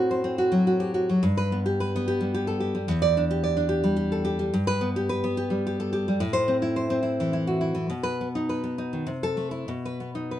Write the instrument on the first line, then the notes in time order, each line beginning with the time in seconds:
nylon-string guitar
Already playing: A2 C4 F#4
0.11 C5
0.24 C4
0.38 F#4
0.52 F#3
0.67 F#4
0.80 G4
0.94 F#4
1.09 F#3
1.23 G2
1.37 B4
1.52 B3
1.66 G4
1.80 B4
1.96 B3
2.08 G4
2.21 G3
2.34 G4
2.47 A4
2.60 G4
2.75 G3
2.88 E2
3.02 D5
3.17 D4
3.31 G4
3.44 D5
3.57 D4
3.69 G4
3.84 G3
3.96 G4
4.12 A4
4.25 G4
4.39 G3
4.54 G2
4.67 B4
4.81 B3
4.96 G4
5.09 B4
5.24 B3
5.37 G4
5.50 G3
5.67 G4
5.80 A4
5.93 G4
6.08 G3
6.20 A2
6.33 C5
6.48 C4
6.62 E4
6.76 C5
6.90 C4
7.03 E4
7.20 E3
7.33 E4
7.47 F#4
7.61 E4
7.75 E3
7.90 B2
8.03 B4
8.21 B3
8.35 D#4
8.49 B4
8.64 B3
8.78 D#4
8.93 D#3
9.06 C3
9.23 A4
9.37 A3
9.51 E4
9.68 B2
9.85 B4
10.00 B3
10.15 D#4
10.31 B4